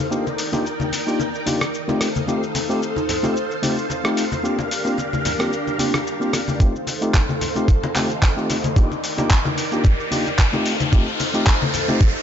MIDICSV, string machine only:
0, 0, Header, 1, 2, 480
1, 0, Start_track
1, 0, Tempo, 540541
1, 103, Time_signature, 4, 2, 24, 8
1, 10855, End_track
2, 0, Start_track
2, 0, Title_t, "String machine"
2, 0, Program_c, 0, 50
2, 0, Note_on_c, 0, 63, 81
2, 101, Note_on_c, 0, 70, 73
2, 101, Note_on_c, 0, 79, 85
2, 104, Note_on_c, 0, 74, 71
2, 1765, Note_off_c, 0, 79, 0
2, 1766, Note_off_c, 0, 70, 0
2, 1767, Note_off_c, 0, 74, 0
2, 1782, Note_on_c, 0, 69, 69
2, 1782, Note_on_c, 0, 77, 84
2, 1784, Note_on_c, 0, 72, 68
2, 3908, Note_off_c, 0, 63, 0
2, 3921, Note_off_c, 0, 69, 0
2, 3922, Note_off_c, 0, 72, 0
2, 3945, Note_on_c, 0, 62, 77
2, 3945, Note_on_c, 0, 70, 74
2, 3946, Note_on_c, 0, 67, 69
2, 5827, Note_off_c, 0, 77, 0
2, 5845, Note_off_c, 0, 62, 0
2, 5845, Note_off_c, 0, 70, 0
2, 5846, Note_off_c, 0, 67, 0
2, 5860, Note_on_c, 0, 63, 79
2, 5860, Note_on_c, 0, 77, 93
2, 5861, Note_on_c, 0, 69, 72
2, 5861, Note_on_c, 0, 72, 70
2, 7762, Note_off_c, 0, 77, 0
2, 7763, Note_off_c, 0, 69, 0
2, 7763, Note_off_c, 0, 72, 0
2, 7781, Note_on_c, 0, 70, 75
2, 7782, Note_on_c, 0, 79, 91
2, 7783, Note_on_c, 0, 74, 75
2, 9426, Note_off_c, 0, 63, 0
2, 9446, Note_off_c, 0, 70, 0
2, 9446, Note_off_c, 0, 74, 0
2, 9446, Note_off_c, 0, 79, 0
2, 9461, Note_on_c, 0, 72, 70
2, 9462, Note_on_c, 0, 63, 78
2, 9462, Note_on_c, 0, 69, 72
2, 9463, Note_on_c, 0, 77, 81
2, 10855, Note_off_c, 0, 63, 0
2, 10855, Note_off_c, 0, 69, 0
2, 10855, Note_off_c, 0, 72, 0
2, 10855, Note_off_c, 0, 77, 0
2, 10855, End_track
0, 0, End_of_file